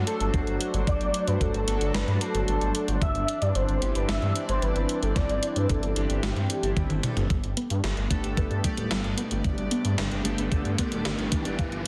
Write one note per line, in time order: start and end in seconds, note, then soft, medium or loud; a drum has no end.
0.00 2.98 F#3 medium
0.00 0.85 A3 medium
0.00 7.26 D4 medium
0.07 1.65 F#3 medium
0.07 1.65 A3 medium
0.07 1.65 D4 medium
0.07 1.65 F#4 medium
0.07 0.57 A4 medium
0.07 1.65 C5 medium
0.07 closed hi-hat medium
0.20 0.30 G1 medium
0.20 closed hi-hat soft
0.34 0.44 G1 medium
0.34 kick loud
0.34 closed hi-hat soft
0.47 0.57 G1 medium
0.47 closed hi-hat soft
0.61 closed hi-hat medium
0.74 0.84 G1 medium
0.74 closed hi-hat soft
0.87 0.97 G1 medium
0.87 1.28 D5 loud
0.87 kick loud
0.87 closed hi-hat medium
1.01 1.11 G1 medium
1.01 closed hi-hat soft
1.14 closed hi-hat medium
1.27 1.38 G2 medium
1.27 1.42 B4 medium
1.27 closed hi-hat soft
1.41 1.51 G1 loud
1.41 1.96 A4 loud
1.41 kick medium
1.41 closed hi-hat soft
1.54 1.64 G1 medium
1.54 closed hi-hat soft
1.68 1.78 G1 medium
1.68 2.18 F#3 loud
1.68 2.18 A3 medium
1.68 2.18 D4 medium
1.68 2.18 F#4 medium
1.68 2.18 A4 loud
1.68 closed hi-hat medium
1.81 1.91 G1 medium
1.81 closed hi-hat soft
1.94 2.04 G1 medium
1.94 2.22 B4 loud
1.94 snare loud
1.94 closed hi-hat medium
2.08 2.18 G2 medium
2.08 closed hi-hat soft
2.21 3.00 F#3 medium
2.21 3.00 A3 medium
2.21 3.00 D4 medium
2.21 3.00 F#4 medium
2.21 2.47 A4 loud
2.21 3.00 C5 medium
2.21 closed hi-hat medium
2.34 2.45 G1 medium
2.34 closed hi-hat soft
2.48 2.58 G1 loud
2.48 2.85 A4 loud
2.48 closed hi-hat soft
2.61 2.72 G1 medium
2.61 closed hi-hat soft
2.75 closed hi-hat medium
2.88 2.98 G1 medium
2.88 closed hi-hat soft
3.01 3.12 G1 loud
3.01 7.26 E3 medium
3.01 7.26 C4 medium
3.01 3.43 E5 loud
3.01 kick loud
3.01 closed hi-hat soft
3.15 3.25 G1 medium
3.15 closed hi-hat soft
3.28 closed hi-hat medium
3.41 3.52 G2 medium
3.41 3.56 D5 loud
3.41 closed hi-hat soft
3.55 3.65 G1 loud
3.55 3.97 C5 medium
3.55 closed hi-hat medium
3.69 3.79 G1 medium
3.69 closed hi-hat soft
3.82 3.92 G1 loud
3.82 4.32 G3 loud
3.82 4.32 C4 medium
3.82 4.32 D4 medium
3.82 4.32 E4 medium
3.82 4.32 G4 loud
3.82 closed hi-hat medium
3.95 4.05 G1 medium
3.95 4.08 B4 loud
3.95 closed hi-hat soft
4.09 4.19 G1 loud
4.09 4.46 E5 loud
4.09 snare loud
4.09 closed hi-hat medium
4.22 4.32 G2 medium
4.22 closed hi-hat soft
4.36 5.93 G3 medium
4.36 5.93 C4 medium
4.36 5.93 D4 medium
4.36 5.93 E4 medium
4.36 5.93 D5 medium
4.36 closed hi-hat medium
4.49 4.59 G1 medium
4.49 4.64 C5 medium
4.49 closed hi-hat soft
4.62 4.72 G1 medium
4.62 5.04 B4 loud
4.62 closed hi-hat soft
4.76 4.86 G1 medium
4.76 closed hi-hat soft
4.89 closed hi-hat medium
5.02 5.13 G1 medium
5.02 5.17 A4 medium
5.02 closed hi-hat soft
5.16 5.26 G1 loud
5.16 5.58 D5 loud
5.16 kick loud
5.16 snare soft
5.16 closed hi-hat medium
5.29 5.39 G1 medium
5.29 closed hi-hat soft
5.43 closed hi-hat medium
5.56 5.66 G2 medium
5.56 5.71 B4 medium
5.56 closed hi-hat medium
5.69 5.80 G1 medium
5.69 6.23 A4 medium
5.69 kick medium
5.69 closed hi-hat soft
5.83 5.93 G1 medium
5.83 closed hi-hat soft
5.96 6.06 G1 medium
5.96 6.47 G3 loud
5.96 6.47 C4 medium
5.96 6.47 D4 medium
5.96 6.47 E4 medium
5.96 6.47 G4 loud
5.96 closed hi-hat medium
6.10 6.20 G1 medium
6.10 closed hi-hat soft
6.23 6.33 G1 medium
6.23 7.00 G4 medium
6.23 snare loud
6.23 closed hi-hat medium
6.36 6.46 G2 medium
6.36 closed hi-hat soft
6.50 closed hi-hat medium
6.63 6.73 G1 medium
6.63 7.00 G3 medium
6.63 7.00 C4 medium
6.63 7.00 D4 medium
6.63 7.00 E4 medium
6.63 7.00 G4 medium
6.63 closed hi-hat medium
6.77 6.87 G1 loud
6.77 kick medium
6.77 closed hi-hat soft
6.77 high tom medium
6.90 7.00 G1 medium
6.90 closed hi-hat soft
6.90 high tom medium
7.03 7.15 G3 medium
7.03 7.15 C4 medium
7.03 7.15 D4 medium
7.03 7.15 E4 medium
7.03 7.15 A4 medium
7.03 closed hi-hat medium
7.03 mid tom medium
7.17 7.27 G1 medium
7.17 closed hi-hat medium
7.17 mid tom medium
7.30 7.40 G1 loud
7.30 7.41 G3 medium
7.30 11.55 G3 medium
7.30 11.55 A3 medium
7.30 11.55 B3 medium
7.30 kick loud
7.30 closed hi-hat medium
7.30 riser medium
7.44 7.54 G1 medium
7.44 closed hi-hat soft
7.57 7.67 B3 loud
7.57 closed hi-hat medium
7.70 7.81 G2 medium
7.70 closed hi-hat medium
7.84 7.94 G1 loud
7.84 8.09 G4 medium
7.84 snare loud
7.84 closed hi-hat medium
7.97 8.07 G1 medium
7.97 closed hi-hat soft
8.11 8.21 G1 medium
8.11 8.61 A3 loud
8.11 8.28 A3 medium
8.11 8.61 B3 medium
8.11 8.61 D4 medium
8.11 8.61 G4 medium
8.11 8.61 A4 loud
8.11 kick loud
8.11 closed hi-hat medium
8.24 8.34 G1 medium
8.24 closed hi-hat medium
8.37 8.47 G1 loud
8.37 8.55 B4 medium
8.37 kick loud
8.37 closed hi-hat medium
8.51 8.61 G2 medium
8.51 closed hi-hat soft
8.64 8.82 G3 medium
8.64 10.22 A3 medium
8.64 10.22 B3 medium
8.64 10.22 D4 medium
8.64 10.22 G4 medium
8.64 10.22 D5 medium
8.64 kick medium
8.64 closed hi-hat medium
8.77 8.88 D1 medium
8.77 closed hi-hat medium
8.91 9.01 G1 medium
8.91 9.08 G3 loud
8.91 snare loud
8.91 closed hi-hat medium
9.04 9.14 G1 medium
9.04 closed hi-hat soft
9.18 9.43 B3 loud
9.18 closed hi-hat medium
9.31 9.41 G1 medium
9.31 closed hi-hat medium
9.44 9.55 G1 loud
9.44 9.62 G3 medium
9.44 kick loud
9.44 closed hi-hat medium
9.58 9.68 G1 medium
9.58 closed hi-hat soft
9.71 9.97 B3 loud
9.71 closed hi-hat medium
9.85 9.95 G2 medium
9.85 closed hi-hat medium
9.98 10.08 G1 loud
9.98 10.16 B4 loud
9.98 snare loud
9.98 closed hi-hat medium
10.11 10.22 G1 medium
10.11 closed hi-hat soft
10.25 10.35 G1 medium
10.25 10.35 A3 medium
10.25 10.75 A3 loud
10.25 10.75 B3 medium
10.25 10.75 D4 medium
10.25 10.75 G4 medium
10.25 10.75 A4 loud
10.25 closed hi-hat medium
10.38 10.48 G1 medium
10.38 closed hi-hat medium
10.52 10.62 G1 medium
10.52 10.62 G3 medium
10.52 kick loud
10.52 closed hi-hat medium
10.65 10.75 G2 medium
10.65 closed hi-hat soft
10.78 11.57 A3 medium
10.78 11.57 B3 medium
10.78 10.89 B3 loud
10.78 11.57 D4 medium
10.78 11.57 G4 medium
10.78 11.57 D5 medium
10.78 kick medium
10.78 closed hi-hat loud
10.92 11.02 D1 medium
10.92 closed hi-hat medium
11.05 11.15 G1 loud
11.05 11.31 G4 medium
11.05 snare loud
11.05 closed hi-hat medium
11.18 11.29 G1 medium
11.18 closed hi-hat soft
11.32 11.50 A3 medium
11.32 kick loud
11.32 closed hi-hat medium
11.45 11.55 G1 medium
11.45 closed hi-hat medium
11.59 11.69 G1 loud
11.59 11.87 D#3 medium
11.59 11.87 F3 medium
11.59 11.87 A#3 medium
11.59 11.76 F5 medium
11.59 kick loud
11.59 closed hi-hat medium
11.72 11.82 G1 medium
11.72 closed hi-hat soft